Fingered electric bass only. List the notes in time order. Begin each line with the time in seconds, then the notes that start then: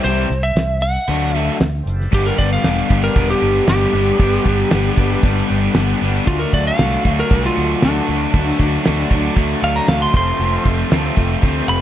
0.04 C2
0.30 C2
0.55 C2
1.08 D2
1.60 D2
1.86 F#1
2.13 G1
2.39 G1
2.64 E1
2.91 G1
3.17 E1
3.42 G1
3.68 G1
3.93 G1
4.20 G1
4.45 G1
4.72 G1
4.98 G1
5.24 G1
5.50 G1
5.76 G1
6.02 G1
6.27 D2
6.53 D2
6.79 C2
7.05 D2
7.31 C2
7.57 D2
7.83 D2
8.09 D2
8.34 D2
8.60 D2
8.87 D2
9.11 D2
9.36 D2
9.62 D2
9.88 D2
10.14 F1
10.39 F1
10.65 F1
10.92 D2
11.18 F1
11.43 D2
11.68 F1